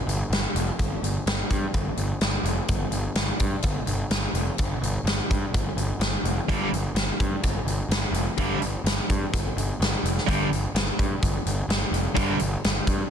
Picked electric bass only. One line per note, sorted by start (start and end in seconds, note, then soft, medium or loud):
0.06 0.21 G1 medium
0.30 0.45 G1 medium
0.54 0.69 F1 medium
0.79 0.94 G1 medium
1.02 1.17 G1 medium
1.26 1.41 G1 medium
1.50 1.65 G2 medium
1.74 1.89 G1 medium
1.97 2.12 G1 medium
2.21 2.36 G1 medium
2.43 2.59 F1 medium
2.69 2.84 G1 medium
2.90 3.06 G1 medium
3.15 3.30 G1 medium
3.40 3.55 G2 medium
3.63 3.78 G1 medium
3.86 4.01 G1 medium
4.10 4.25 G1 medium
4.33 4.48 F1 medium
4.58 4.73 G1 medium
4.81 4.96 G1 medium
5.04 5.19 G1 medium
5.30 5.44 G2 medium
5.53 5.68 G1 medium
5.76 5.91 G1 medium
5.99 6.14 G1 medium
6.23 6.38 F1 medium
6.48 6.63 G1 medium
6.71 6.86 G1 medium
6.94 7.09 G1 medium
7.20 7.34 G2 medium
7.43 7.58 G1 medium
7.65 7.80 G1 medium
7.89 8.04 G1 medium
8.11 8.26 F1 medium
8.38 8.52 G1 medium
8.59 8.75 G1 medium
8.84 8.99 G1 medium
9.09 9.24 G2 medium
9.33 9.48 G1 medium
9.56 9.70 G1 medium
9.79 9.94 G1 medium
10.03 10.18 F1 medium
10.28 10.42 G1 medium
10.50 10.65 G1 medium
10.74 10.89 G1 medium
10.99 11.13 G2 medium
11.23 11.37 G1 medium
11.46 11.60 G1 medium
11.68 11.83 G1 medium
11.91 12.06 F1 medium
12.16 12.30 G1 medium
12.40 12.54 G1 medium
12.65 12.79 G1 medium
12.87 13.01 G2 medium